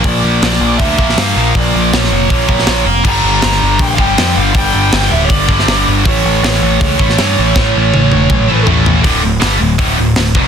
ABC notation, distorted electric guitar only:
X:1
M:4/4
L:1/8
Q:1/4=160
K:Dm
V:1 name="Distorted electric guitar" clef=bass
[B,,F,B,]4 [B,,F,B,] [B,,F,B,]2 [B,,F,B,]- | [B,,F,B,]4 [B,,F,B,] [B,,F,B,]2 z | [G,,D,G,]4- [G,,D,G,] [G,,D,G,] [G,,D,G,]2 | [G,,D,G,]4- [G,,D,G,] [G,,D,G,] [G,,D,G,]2 |
[A,,E,A,]4- [A,,E,A,] [A,,E,A,] [A,,E,A,]2 | [A,,E,A,]4- [A,,E,A,] [A,,E,A,] [A,,E,A,]2 | [D,,A,,D,] [D,,A,,] [G,,D,G,] [D,,A,,] [D,,A,,D,] [D,,A,,] [D,,A,,] [E,,=B,,E,] |]